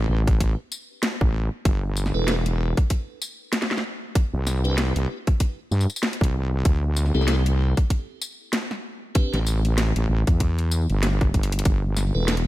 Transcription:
0.09 A1
0.27 kick, closed hi-hat
0.40 kick, closed hi-hat
0.72 tambourine
1.03 snare, closed hi-hat
1.21 A1, kick
1.65 G1, kick, closed hi-hat
1.97 tambourine
2.06 snare
2.14 E1 D4 E4 A4 B4
2.28 snare, closed hi-hat
2.46 closed hi-hat
2.77 kick, closed hi-hat
2.90 kick, closed hi-hat
3.22 tambourine
3.53 snare, closed hi-hat
3.62 snare
3.71 snare
3.77 snare
4.15 kick, closed hi-hat
4.33 C2
4.47 snare, tambourine
4.64 D4 E4 G4 B4, closed hi-hat
4.78 snare, closed hi-hat
4.96 C2, closed hi-hat
5.27 kick, closed hi-hat
5.40 kick, closed hi-hat
5.71 G2, tambourine
5.81 tambourine
5.90 tambourine
5.96 tambourine
6.03 snare, closed hi-hat
6.13 closed hi-hat
6.21 C2, kick, closed hi-hat
6.65 D2, kick, closed hi-hat
6.96 snare, tambourine
7.06 snare
7.14 C2 C4 E4 G4 A4, snare
7.21 snare
7.28 snare, closed hi-hat
7.46 closed hi-hat
7.77 kick, closed hi-hat
7.90 kick, closed hi-hat
8.21 tambourine
8.53 snare, closed hi-hat
8.71 snare
9.15 C4 D4 G4 B4, kick, closed hi-hat
9.34 A1, snare, closed hi-hat
9.47 tambourine
9.65 closed hi-hat
9.78 snare, closed hi-hat
9.96 A1, closed hi-hat
10.09 A1
10.27 E2, kick, closed hi-hat
10.40 kick, closed hi-hat
10.59 closed hi-hat
10.71 tambourine
10.90 G1, closed hi-hat
11.03 snare, closed hi-hat
11.21 kick, closed hi-hat
11.34 G1, kick, closed hi-hat
11.43 closed hi-hat
11.52 closed hi-hat
11.59 closed hi-hat
11.65 G1, kick, closed hi-hat
11.96 snare, tambourine
12.15 E1 D4 E4 A4 B4
12.28 snare, closed hi-hat
12.37 closed hi-hat

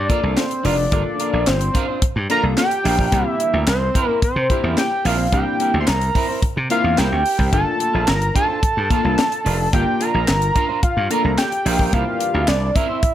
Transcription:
Already playing: D5
0.08 A#3 D4 F4 A4 A#4, kick, closed hi-hat
0.22 C2 D4 F4 A#4
0.31 D5
0.37 C5, snare, clap, closed hi-hat
0.50 muted clean electric guitar stroke, closed hi-hat
0.63 F1 D4 F4 A#4 D5, open hi-hat
0.78 muted clean electric guitar stroke
0.91 G1 A#3 D4 F4 A4 A#4 D5, kick, closed hi-hat
1.05 muted clean electric guitar stroke
1.19 D4 F4 A#4, closed hi-hat
1.33 A#1 D4 F4 A#4
1.47 G1 C5, muted clean electric guitar stroke, snare, clap, closed hi-hat
1.60 muted clean electric guitar stroke, closed hi-hat
1.74 D4 F4 A#4, kick, closed hi-hat
1.88 D4 F4 C5
2.02 muted clean electric guitar stroke, muted slap bass stroke, kick, closed hi-hat
2.16 G2, muted clean electric guitar stroke
2.29 A#3 D4 F4 A4 A#4 A#5, closed hi-hat
2.43 C2, muted clean electric guitar stroke
2.57 G5, muted clean electric guitar stroke, snare, clap, closed hi-hat
2.71 muted clean electric guitar stroke, closed hi-hat
2.84 A#1 D4 F4 A#4, open hi-hat
2.98 D4 F4 A#4, kick
3.11 C2 A#3 C4 D4 E4 G4 A#4 E5, kick, closed hi-hat
3.26 muted clean electric guitar stroke
3.40 muted clean electric guitar stroke, closed hi-hat
3.53 D2 C4 E4 A#4
3.67 C2 C5, snare, clap, closed hi-hat
3.81 muted clean electric guitar stroke
3.94 C4 E4 A#4, kick, closed hi-hat
4.09 C4 E4
4.22 C5, muted clean electric guitar stroke, muted slap bass stroke, kick, closed hi-hat
4.36 C3, muted clean electric guitar stroke
4.49 A#3 C4 D4 E4 G4 A#4, kick, closed hi-hat
4.63 E2 C4 E4 A#4
4.78 G5, snare, clap, closed hi-hat
4.91 muted clean electric guitar stroke
5.05 A#1 C4 E4 A#4 F5, open hi-hat
5.19 muted clean electric guitar stroke
5.32 C2 A#3 C4 D4 E4 G4 A#4 G5, kick, closed hi-hat
5.46 muted clean electric guitar stroke
5.60 C4 E4 A#4, closed hi-hat
5.74 D2 C4 E4 A#4
5.80 C6
5.87 C2 A#5, muted clean electric guitar stroke, snare, clap, closed hi-hat
6.01 muted clean electric guitar stroke, closed hi-hat
6.15 C4 E4 A#4, kick, open hi-hat
6.29 C4 E4 C5
6.42 muted clean electric guitar stroke, muted slap bass stroke, kick, closed hi-hat
6.56 C3, muted clean electric guitar stroke
6.70 A#3 C4 D4 E4 A#4 F5, closed hi-hat
6.83 E2, muted clean electric guitar stroke
6.97 C2 C4 E4 A#4 G5, snare, clap, closed hi-hat
7.11 D2, muted clean electric guitar stroke
7.24 muted clean electric guitar stroke, open hi-hat
7.38 C2 C4 E4 A#4, kick
7.52 G1 A#3 D4 F4 A4 A#4 A5, kick, closed hi-hat
7.66 muted clean electric guitar stroke
7.80 muted clean electric guitar stroke, closed hi-hat
7.93 A#1 D4 F4 A#4
8.07 G1 A#5, muted clean electric guitar stroke, snare, clap, closed hi-hat
8.21 muted clean electric guitar stroke, closed hi-hat
8.34 D4 F4 A#4 A5, kick, closed hi-hat
8.48 D4 F4 C5
8.63 muted slap bass stroke, kick, closed hi-hat
8.76 G2, muted clean electric guitar stroke
8.90 A#3 D4 F4 A4 A#4, kick, closed hi-hat
9.04 C2 D4 F4 A#4
9.19 snare, clap, closed hi-hat
9.31 muted clean electric guitar stroke, closed hi-hat
9.45 F1 D4 F4 A#4, open hi-hat
9.59 muted clean electric guitar stroke
9.73 G1 A#3 D4 F4 A#4 G5, kick, closed hi-hat
9.86 muted clean electric guitar stroke
10.00 D4 F4 A#4 A#5, closed hi-hat
10.14 A#1 D4 F4 A#4
10.28 G1, muted clean electric guitar stroke, snare, clap, closed hi-hat
10.41 muted clean electric guitar stroke, closed hi-hat
10.55 D4 F4 A#4, kick, closed hi-hat
10.69 D4 F4 C5
10.83 F5, muted slap bass stroke, kick, closed hi-hat
10.96 G2, muted clean electric guitar stroke
11.10 A#3 D4 F4 A4 A#4 A#5, closed hi-hat
11.24 C2, muted clean electric guitar stroke
11.38 G5, muted clean electric guitar stroke, snare, clap, closed hi-hat
11.52 muted clean electric guitar stroke, closed hi-hat
11.65 A#1 D4 F4 A#4, open hi-hat
11.79 D4 F4 A#4, kick
11.93 C2 E3 A#3 C4 D4 E4 G4 A#4 F5, kick, closed hi-hat
12.07 muted clean electric guitar stroke
12.20 muted clean electric guitar stroke, closed hi-hat
12.34 D2 C4 E4 A#4
12.48 C2 D5, muted clean electric guitar stroke, snare, clap, closed hi-hat
12.61 muted clean electric guitar stroke
12.75 C4 E4 A#4 E5, kick, closed hi-hat
12.89 C4 E4 C5
13.03 muted clean electric guitar stroke, muted slap bass stroke, kick, closed hi-hat

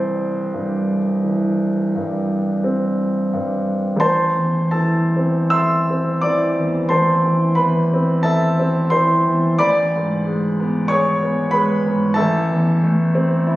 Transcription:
Already playing: C2 E3 C4 C5 D5
0.54 G2
1.24 E3
1.95 G2
2.64 C4
3.33 G2
3.96 A1 C6
4.00 C5 A5
4.37 E2
4.71 E3 A4 A5
5.17 C4
5.50 A4 E5 C6 E6
5.91 C4
6.21 E3 D5 D6
6.60 E2
6.89 A1 C5 A5 C6
7.26 E3
7.55 E2 B4 B5
7.94 C4
8.23 A4 E5 A5
8.59 C4
8.90 E3 C5 C6
9.28 E2
9.59 A1 D5 B5 D6
9.96 G#2
10.26 G#3
10.60 B3
10.88 G#4 C#5 C#6
11.22 B3
11.51 G#3 B4 B5
11.86 G#2
12.14 A1 A4 E5 A5
12.52 E2
12.84 A3
13.15 C4
13.47 E4

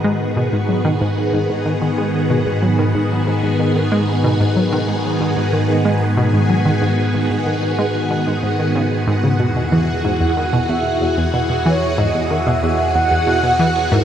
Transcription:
Already playing: G#2 D#3 B3 F#4 G#4 F#5
0.04 G#3
0.37 B2
0.53 G#2
0.69 F#3
0.85 D#3
1.01 G#2
1.33 G#2
1.50 G#2
1.66 D#3
1.82 D#3
1.98 G#3
2.30 B2
2.46 G#2
2.63 F#3
2.79 D#3
2.95 G#2
3.27 G#2
3.43 G#2
3.59 D#3
3.76 D#3
3.92 G#3
4.24 B2
4.40 G#2
4.56 F#3
4.73 D#3
4.88 G#2
5.21 G#2
5.37 G#2
5.53 D#3
5.69 D#3
5.85 G#3
6.17 B2
6.33 G#2
6.50 F#3
6.66 D#3
6.82 G#2
7.14 G#2
7.30 G#2
7.46 D#3
7.63 D#3
7.79 G#3
8.11 B2
8.27 G#2
8.43 G#2
8.59 D#3
8.75 C#3
9.07 G#2
9.24 C#3
9.40 E2 B2 E3 F#4 G#4
9.56 B2
9.72 E3
10.05 G#2 F#5
10.21 E2
10.37 D#3
10.53 B2
10.69 E2 E5
11.01 E2
11.18 E2
11.34 B2
11.50 B2
11.66 E3 C#5
11.98 G#2 D#5
12.14 E2
12.31 D#3 E5
12.47 B2
12.63 E2
12.95 E2 F#5
13.11 E2
13.27 B2
13.43 B2
13.59 E3
13.92 G#2 A#4

